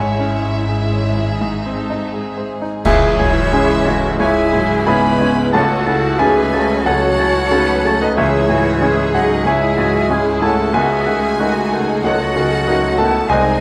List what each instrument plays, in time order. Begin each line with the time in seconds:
Already playing: double bass section G#1, grand piano G#2 C#5 G#5, cello section G#2, viola section G#3 E4, violin section G#4 C#5 E5
0.19 grand piano C#4
0.44 grand piano E4
0.69 grand piano G#4, violin section G#4
0.93 grand piano C#5
1.18 grand piano E4
1.41 grand piano G#2, viola section D#4
1.66 grand piano C4
1.77 violin section A4
1.90 grand piano D#4
2.14 grand piano G#4, violin section G#4
2.38 grand piano C5
2.62 grand piano D#4
2.84 double bass section C#2, grand piano C#2 G#4 C#5 E5, bassoon C#3, french horn section E3, viola section G#3 C#4, clarinet E4, cello section E4, violin section G#4 E5, flute C#5, oboe G#5, concert bass drum, crash
3.19 grand piano G#2, bassoon C#3, viola section F#3, oboe G#5
3.52 bassoon C#3, viola section G#3, grand piano G#3 C#4 G#4, violin section E4, cello section G#4, oboe G#5
3.85 bassoon C#3, grand piano G#3, viola section A3, cello section F#4, oboe G#5
4.19 grand piano C#2 C#5 E5 G#5, bassoon C#3, french horn section G#3, viola section G#3 E4, cello section E4, violin section E4 G#5, clarinet G#4, flute E5, oboe G#5
4.52 grand piano G#2, bassoon C#3, viola section F#3, cello section G#4, oboe G#5
4.86 bassoon C#3, grand piano G#3 C#4 G#4 E5 G#5 B5, viola section G#3 D#4, french horn section B3, cello section E4, clarinet B4, flute G#5, oboe G#5, violin section B5
5.19 bassoon C#3, grand piano G#3, viola section C#4, oboe G#5
5.52 grand piano C#2 C#5 F#5 A5, bassoon C#3, french horn section A3, viola section A3 C#4, violin section F#4 A5, cello section F#4, clarinet A4, flute F#5, oboe A5
5.86 bassoon C#3, grand piano C#3, viola section E4, oboe A5
6.18 bassoon C#3, viola section F#3 D#4, french horn section G#3, grand piano A3 C#4 F#4 G#5, cello section G#4, clarinet G#4, violin section B4 G#5, flute E5, oboe A5
6.53 bassoon C#3, grand piano A3, viola section C#4, cello section F#4, oboe A5
6.83 grand piano C#2 A4 F#5, bassoon C#3, french horn section F#3, viola section F#4, clarinet F#4, cello section A4, violin section A4 F#5, flute C#5, oboe A5
6.88 grand piano C#5
7.18 grand piano C#3, bassoon C#3, viola section E4, cello section F#4, oboe A5
7.51 bassoon C#3, grand piano A3 C#4 F#4, viola section D#4, cello section B4, oboe A5
7.84 bassoon C#3, grand piano A3, viola section C#4, cello section A4, oboe A5
8.00 french horn section D#3, clarinet D#4, flute B4, violin section D#5, grand piano D#5
8.16 double bass section C#2, grand piano C#2 G#4 C#5 E5, bassoon C#3, french horn section E3, viola section G#3, clarinet E4, violin section G#4 E5, cello section G#4, flute C#5, oboe G#5
8.49 grand piano G#2, bassoon C#3, viola section A3, cello section F#4, oboe G#5
8.81 bassoon C#3, grand piano G#3 C#4 G#4, viola section C#4, cello section G#4, oboe G#5
9.13 bassoon C#3, french horn section F#3, grand piano G#3 F#5, viola section D#4, clarinet F#4, flute D#5, violin section F#5, oboe G#5
9.45 grand piano C#2 C#5 E5 G#5, bassoon C#3, viola section G#3 E4, french horn section G#3, cello section E4, clarinet G#4, flute E5, oboe G#5, violin section G#5
9.78 grand piano G#2, bassoon C#3, viola section F#3, cello section F#4, oboe G#5
10.09 bassoon C#3, viola section G#3 C#4, grand piano G#3 C#4 G#4, violin section E4, cello section G#4, oboe G#5
10.40 bassoon C#3, viola section G#3, grand piano G#3 A5, french horn section A3, cello section E4, clarinet A4, flute F#5, oboe G#5, violin section A5
10.73 grand piano C#2 G#5, bassoon D#3, french horn section G#3, viola section B3, violin section F#4 G#5, cello section F#4, clarinet G#4, flute E5, oboe F#5
11.05 grand piano C#3, bassoon D#3, viola section A3, cello section G#4, oboe F#5
11.39 bassoon D#3, viola section G#3 D#4, grand piano A3 D#4 F#4, cello section F#4, violin section F#4, oboe F#5
11.72 bassoon D#3, viola section F#3, grand piano A3, cello section G#4, oboe F#5
12.03 grand piano C#2 C#5 D#5 F#5, bassoon D#3, french horn section F#3, clarinet F#4, viola section F#4, cello section A4, flute D#5, violin section F#5, oboe F#5
12.35 grand piano C#3, bassoon D#3, oboe F#5
12.65 bassoon D#3, viola section A3 C#4, grand piano A3 D#4 F#4, cello section F#4, oboe F#5
12.97 bassoon D#3, grand piano A3 A5, french horn section A3, viola section B3, cello section E4, clarinet A4, oboe F#5, flute F#5, violin section A5
13.29 grand piano C2 C5 D#5 G#5, double bass section C2, bassoon G#3, french horn section G#3, viola section C4 D#4, cello section D#4, clarinet G#4, violin section G#4 G#5, flute D#5, oboe F#5